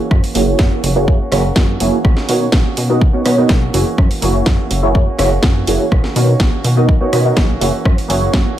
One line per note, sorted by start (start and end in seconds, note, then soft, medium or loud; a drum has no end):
0.00 0.33 E3 medium
0.00 0.35 A#3 medium
0.00 0.36 C#4 medium
0.00 0.37 F#4 medium
0.11 0.21 F#2 loud
0.11 kick loud
0.11 cross-stick medium
0.24 open hi-hat medium
0.34 0.55 F#1 medium
0.34 0.47 E3 medium
0.34 0.93 A#3 medium
0.34 0.48 A#3 medium
0.34 0.47 C#4 medium
0.34 0.93 E4 medium
0.34 0.93 F#4 medium
0.34 0.46 F#4 medium
0.34 0.94 G#4 medium
0.34 0.94 C#5 medium
0.34 open hi-hat loud
0.47 0.59 A#3 soft
0.47 0.59 C#4 medium
0.47 0.59 F#4 medium
0.59 0.69 F#2 medium
0.59 0.82 E3 medium
0.59 0.83 A#3 medium
0.59 0.84 C#4 medium
0.59 0.85 F#4 loud
0.59 kick loud
0.59 snare loud
0.83 1.09 F#1 medium
0.83 0.96 E3 medium
0.83 0.97 A#3 medium
0.83 0.96 C#4 medium
0.83 0.94 F#4 medium
0.83 open hi-hat loud
0.96 1.05 A#3 medium
0.96 1.22 A#3 medium
0.96 1.21 C#4 medium
0.96 1.05 E4 medium
0.96 1.19 F#4 medium
0.96 1.05 F#4 medium
0.96 1.05 G#4 medium
0.96 1.05 C#5 loud
1.07 1.18 F#2 medium
1.07 1.18 A#3 medium
1.07 1.18 E4 medium
1.07 1.19 C#5 medium
1.07 kick loud
1.20 1.32 A#3 medium
1.20 1.33 C#4 medium
1.20 1.32 F#4 medium
1.32 1.51 F#1 medium
1.32 1.44 E3 medium
1.32 1.42 A#3 loud
1.32 1.45 A#3 medium
1.32 1.45 C#4 medium
1.32 1.42 E4 medium
1.32 1.43 F#4 medium
1.32 1.43 G#4 medium
1.32 1.43 C#5 loud
1.32 cross-stick medium
1.32 snare soft
1.32 open hi-hat loud
1.44 1.56 A#3 medium
1.44 1.56 C#4 medium
1.44 1.56 F#4 medium
1.56 1.76 F#2 medium
1.56 2.04 E3 medium
1.56 2.05 A#3 medium
1.56 2.05 C#4 loud
1.56 2.06 F#4 loud
1.56 kick loud
1.56 snare loud
1.80 1.90 F#1 medium
1.80 1.97 A#3 medium
1.80 1.97 E4 medium
1.80 1.97 F#4 medium
1.80 1.97 G#4 medium
1.80 1.97 C#5 medium
1.80 open hi-hat loud
2.04 2.15 B1 loud
2.04 2.27 D#3 medium
2.04 2.28 A#3 medium
2.04 2.29 C#4 medium
2.04 2.30 F#4 loud
2.04 kick loud
2.04 cross-stick medium
2.17 snare soft
2.28 2.48 B2 medium
2.28 2.41 D#3 medium
2.28 2.42 A#3 medium
2.28 2.45 B3 medium
2.28 2.41 C#4 medium
2.28 2.45 D#4 medium
2.28 2.45 F#4 medium
2.28 2.40 F#4 medium
2.28 2.45 A#4 medium
2.28 2.45 C#5 medium
2.28 open hi-hat loud
2.41 2.52 A#3 soft
2.41 2.53 C#4 medium
2.41 2.53 F#4 medium
2.52 2.63 B1 medium
2.52 2.75 D#3 medium
2.52 kick loud
2.52 snare loud
2.76 3.03 B2 medium
2.76 2.89 D#3 medium
2.76 2.90 A#3 medium
2.76 2.90 C#4 medium
2.76 2.88 F#4 medium
2.76 open hi-hat loud
2.89 3.15 A#3 soft
2.89 3.05 B3 medium
2.89 3.14 C#4 medium
2.89 3.05 D#4 medium
2.89 3.12 F#4 medium
2.89 3.06 F#4 medium
2.89 3.06 A#4 medium
2.89 3.06 D#5 medium
3.01 3.11 B1 medium
3.01 kick loud
3.13 3.25 A#3 medium
3.13 3.23 B3 medium
3.13 3.26 C#4 medium
3.13 3.23 D#4 medium
3.13 3.25 F#4 medium
3.13 3.24 F#4 medium
3.13 3.24 A#4 medium
3.13 3.24 C#5 medium
3.25 3.45 B2 medium
3.25 3.38 D#3 medium
3.25 3.39 A#3 medium
3.25 3.36 B3 medium
3.25 3.38 C#4 medium
3.25 3.36 D#4 medium
3.25 3.36 F#4 medium
3.25 3.36 A#4 medium
3.25 3.36 C#5 loud
3.25 cross-stick medium
3.25 open hi-hat loud
3.37 3.49 A#3 medium
3.37 3.48 B3 medium
3.37 3.50 C#4 medium
3.37 3.48 D#4 medium
3.37 3.50 F#4 medium
3.37 3.48 F#4 medium
3.37 3.48 A#4 medium
3.37 3.48 D#5 medium
3.49 3.69 B1 medium
3.49 3.73 D#3 medium
3.49 3.73 A#3 medium
3.49 3.74 C#4 medium
3.49 3.74 F#4 medium
3.49 kick loud
3.49 snare loud
3.73 3.84 F#1 medium
3.73 4.20 E3 medium
3.73 3.84 A#3 medium
3.73 4.22 A#3 medium
3.73 4.23 C#4 medium
3.73 3.84 E4 medium
3.73 3.84 F#4 medium
3.73 4.24 F#4 medium
3.73 3.84 G#4 medium
3.73 3.85 C#5 medium
3.73 open hi-hat loud
3.98 4.08 F#2 loud
3.98 kick loud
3.98 cross-stick medium
4.11 open hi-hat medium
4.21 4.42 F#1 medium
4.21 4.35 E3 medium
4.21 4.80 A#3 medium
4.21 4.35 A#3 medium
4.21 4.35 C#4 medium
4.21 4.80 E4 medium
4.21 4.80 F#4 medium
4.21 4.33 F#4 medium
4.21 4.80 G#4 medium
4.21 4.81 C#5 medium
4.21 open hi-hat loud
4.34 4.46 A#3 soft
4.34 4.47 C#4 medium
4.34 4.46 F#4 medium
4.46 4.57 F#2 medium
4.46 4.72 F#4 medium
4.46 kick loud
4.46 snare loud
4.70 4.96 F#1 medium
4.70 4.83 E3 medium
4.70 4.84 A#3 medium
4.70 4.83 C#4 medium
4.70 4.81 F#4 medium
4.70 open hi-hat loud
4.83 4.92 A#3 medium
4.83 5.09 A#3 soft
4.83 5.07 C#4 medium
4.83 4.92 E4 medium
4.83 5.06 F#4 medium
4.83 4.92 F#4 medium
4.83 4.92 G#4 medium
4.83 4.92 C#5 loud
4.94 5.05 F#2 medium
4.94 5.05 A#3 medium
4.94 5.05 F#4 medium
4.94 5.05 G#4 medium
4.94 5.06 C#5 medium
4.94 kick loud
5.07 5.19 A#3 soft
5.07 5.20 C#4 medium
5.07 5.19 F#4 medium
5.18 5.38 F#1 medium
5.18 5.31 E3 medium
5.18 5.29 A#3 loud
5.18 5.32 A#3 medium
5.18 5.32 C#4 medium
5.18 5.30 E4 medium
5.18 5.30 F#4 medium
5.18 5.30 G#4 medium
5.18 5.30 C#5 loud
5.18 cross-stick medium
5.18 snare soft
5.18 open hi-hat loud
5.31 5.43 A#3 soft
5.31 5.43 C#4 medium
5.31 5.43 F#4 medium
5.43 5.63 F#2 loud
5.43 5.91 E3 medium
5.43 5.92 A#3 medium
5.43 5.93 C#4 medium
5.43 5.93 F#4 loud
5.43 kick loud
5.43 snare loud
5.67 5.77 F#1 medium
5.67 5.84 A#3 medium
5.67 5.84 E4 medium
5.67 5.84 F#4 medium
5.67 5.84 G#4 medium
5.67 5.84 C#5 medium
5.67 open hi-hat loud
5.91 6.02 B1 loud
5.91 6.14 D#3 medium
5.91 6.16 A#3 medium
5.91 6.17 C#4 medium
5.91 6.17 F#4 medium
5.91 kick loud
5.91 cross-stick medium
6.04 snare soft
6.16 6.35 B2 medium
6.16 6.28 D#3 medium
6.16 6.29 A#3 medium
6.16 6.32 B3 medium
6.16 6.29 C#4 medium
6.16 6.32 D#4 medium
6.16 6.33 F#4 medium
6.16 6.27 F#4 medium
6.16 6.33 A#4 medium
6.16 6.33 C#5 medium
6.16 open hi-hat loud
6.28 6.40 A#3 soft
6.28 6.40 C#4 medium
6.28 6.40 F#4 medium
6.40 6.50 B1 medium
6.40 6.62 D#3 medium
6.40 6.64 A#3 medium
6.40 6.65 C#4 loud
6.40 kick loud
6.40 snare loud
6.64 6.90 B2 medium
6.64 6.77 D#3 medium
6.64 6.77 A#3 medium
6.64 6.77 C#4 medium
6.64 6.75 F#4 medium
6.64 open hi-hat loud
6.76 7.02 A#3 soft
6.76 6.93 B3 medium
6.76 7.01 C#4 medium
6.76 6.93 D#4 medium
6.76 6.99 F#4 medium
6.76 6.93 F#4 medium
6.76 6.93 A#4 medium
6.76 6.93 D#5 medium
6.89 6.98 B1 medium
6.89 kick loud
7.01 7.12 A#3 soft
7.01 7.11 B3 medium
7.01 7.13 C#4 medium
7.01 7.11 D#4 medium
7.01 7.13 F#4 medium
7.01 7.11 F#4 medium
7.01 7.11 A#4 medium
7.01 7.11 C#5 loud
7.12 7.32 B2 medium
7.12 7.25 D#3 medium
7.12 7.26 A#3 medium
7.12 7.23 B3 medium
7.12 7.25 C#4 medium
7.12 7.23 D#4 medium
7.12 7.23 F#4 medium
7.12 7.23 A#4 medium
7.12 7.23 C#5 loud
7.12 cross-stick medium
7.12 open hi-hat loud
7.25 7.36 A#3 medium
7.25 7.35 B3 medium
7.25 7.37 C#4 medium
7.25 7.35 D#4 medium
7.25 7.37 F#4 medium
7.25 7.35 F#4 medium
7.25 7.35 A#4 medium
7.25 7.35 D#5 medium
7.37 7.56 B1 medium
7.37 7.60 D#3 medium
7.37 7.60 A#3 medium
7.37 7.61 C#4 medium
7.37 7.62 F#4 loud
7.37 kick loud
7.37 snare loud
7.61 7.71 F#1 medium
7.61 8.08 E3 medium
7.61 7.71 A#3 medium
7.61 8.10 A#3 medium
7.61 8.11 C#4 medium
7.61 7.71 E4 medium
7.61 7.71 F#4 medium
7.61 8.12 F#4 medium
7.61 7.72 G#4 medium
7.61 7.72 C#5 medium
7.61 open hi-hat loud
7.85 7.95 F#2 loud
7.85 kick loud
7.85 cross-stick medium
7.98 open hi-hat medium
8.08 8.29 F#1 loud
8.08 8.22 E3 medium
8.08 8.59 A#3 medium
8.08 8.23 A#3 medium
8.08 8.22 C#4 medium
8.08 8.59 E4 medium
8.08 8.59 F#4 medium
8.08 8.59 G#4 medium
8.08 8.59 C#5 medium
8.08 open hi-hat loud
8.13 8.20 F#4 medium
8.22 8.33 A#3 soft
8.22 8.34 C#4 medium
8.22 8.34 F#4 medium
8.33 8.44 F#2 medium
8.33 8.56 E3 medium
8.33 8.57 A#3 medium
8.33 8.58 C#4 medium
8.33 8.59 F#4 loud
8.33 kick loud
8.33 snare loud